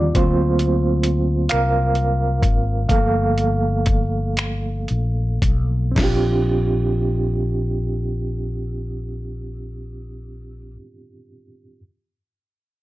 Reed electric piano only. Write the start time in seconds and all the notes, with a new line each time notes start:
Already playing: D3 F3 G3 C4 F4 D5
0.15 F#3 A#3 C4 F4 C5
1.49 A#4 F5
2.89 F3 A3 A#3 A4 F5
5.92 C4 D4
5.99 F4 G4